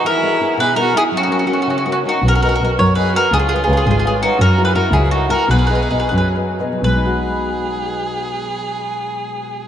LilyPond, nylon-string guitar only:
\new Staff \with { instrumentName = "Nylon-string guitar" } { \time 6/8 \key b \major \tempo 4. = 109 e8 <e' gis' dis''>8 <dis' e' gis'>8 b,8 <dis' e' gis'>8 <dis' e' gis'>8 | fis8 <cis' fis' ais'>8 <cis' fis' ais'>8 cis8 <cis' fis' ais'>8 <cis' fis' ais'>8 | b8 <ais' b' dis''>8 <ais' b' dis''>8 fis8 <ais' b' dis''>8 <ais' b' dis''>8 | cis'8 <b' cis'' eis''>8 <b' cis'' eis''>8 gis8 <b' cis'' eis''>8 <b' cis'' eis''>8 |
fis8 <e' fis' ais'>8 <e' fis' ais'>8 cis8 <e' fis' ais'>8 <e' fis' ais'>8 | b8 <gis' b' dis''>8 <gis' b' dis''>8 fis8 <gis' b' dis''>8 <gis' b' dis''>8 | <b, fis gis dis' fis'>2.~ | <b, fis gis dis' fis'>2. | }